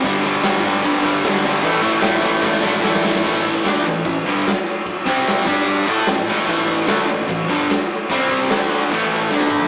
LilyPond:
<<
  \new Staff \with { instrumentName = "Distorted electric guitar" } { \clef bass \time 4/4 \key g \lydian \tempo 4 = 149 <g, d g>8 <g, d g>8 <g, d g>8 <g, d g>8 <g, d g>8 <g, d g>8 <g, d g>8 <g, d g>8 | <a, e a>8 <a, e a>8 <a, e a>8 <a, e a>8 <a, e a>8 <a, e a>8 <a, e a>8 <a, e a>8 | <a, e a>4 <d a d'>8 <a, e>8 <a, e>8 <g, d g>8 r4 | r8 <c g c'>4 <g d' g'>4 <a e' a'>8 <a, e>8 <a, e a>8 |
<a, e a>4 <d a d'>8 <a, e>8 <a, e>8 <g, d g>8 r4 | <c g c'>4 <d a d'>4 <a, e a>4 <d a d'>4 | }
  \new DrumStaff \with { instrumentName = "Drums" } \drummode { \time 4/4 <cymc bd>8 cymc8 <cymc sn>8 <cymc bd>8 <cymc bd>8 <cymc bd>8 <cymc sn>8 cymc8 | <cymc bd>8 cymc8 <cymc sn>8 <cymc bd>8 <bd sn>16 sn16 sn16 sn16 sn16 sn16 sn16 sn16 | <cymc bd>8 <cymc bd>8 <cymc sn>8 cymc8 <cymc bd>8 cymc8 <cymc sn>16 sn16 cymc8 | <cymc bd>8 <cymc bd>8 <cymc sn>8 <cymc bd>8 cymc8 cymc8 <cymc sn>8 cymc16 sn16 |
<cymc bd>8 <cymc bd>8 <cymc sn>8 cymc8 <cymc bd>8 cymc8 <cymc sn>16 sn16 cymc8 | <cymc bd>8 <cymc bd>8 <cymc sn>8 cymc8 r4 sn16 tommh16 toml16 tomfh16 | }
>>